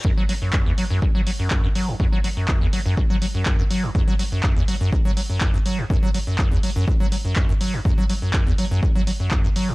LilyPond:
<<
  \new Staff \with { instrumentName = "Acid bass" } { \clef bass \time 4/4 \key e \mixolydian \tempo 4 = 123 fis,16 fis16 fis16 fis,16 fis,16 e,16 fis16 fis,16 r16 fis16 fis16 fis,16 r16 fis,16 fis16 fis,16 | fis,16 fis16 fis16 fis,16 r16 e,16 fis16 fis,16 fis,16 fis16 fis16 fis,16 fis,16 fis,16 fis16 fis,16 | fis,16 fis16 fis16 fis,16 fis,16 e,16 fis16 fis,16 r16 fis16 fis16 fis,16 fis,16 fis,16 fis16 fis,16 | fis,16 fis16 fis16 fis,16 fis,16 e,16 fis16 fis,16 r16 fis16 fis16 fis,16 fis,16 fis,16 fis16 fis,16 |
fis,16 fis16 fis16 fis,16 fis,16 e,16 fis16 fis,16 r16 fis16 fis16 fis,16 fis,16 fis,16 fis16 fis,16 | }
  \new DrumStaff \with { instrumentName = "Drums" } \drummode { \time 4/4 bd8 hho8 <hc bd>8 hho8 bd8 hho8 <hc bd>8 hho8 | bd8 hho8 <hc bd>8 hho8 bd8 hho8 <hc bd>8 hho8 | bd8 hho8 <hc bd>8 hho8 bd8 hho8 <hc bd>8 hho8 | bd8 hho8 <hc bd>8 hho8 bd8 hho8 <hc bd>8 hho8 |
bd8 hho8 <hc bd>8 hho8 bd8 hho8 <hc bd>8 hho8 | }
>>